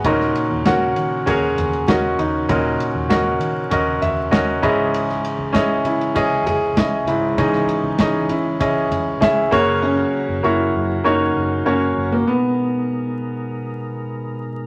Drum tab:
RD |x-x-x-x-x-xxx-x-|x-x-x-x-x-x-x-x-|x-x-x-xxx-x-x-x-|x-x-x-x-x-x-x-x-|
SD |-o--o-------o---|----o-------o---|-o--o-------o---|-o--o-------o---|
FT |----------o-----|----------o-----|----------o-----|----------o-----|
BD |o---o---o---o---|o---o---o---o-o-|----o---o---o---|o---o---o---o-o-|

RD |----------------|----------------|
SD |----------------|----------------|
FT |----------------|----------------|
BD |----------------|----------------|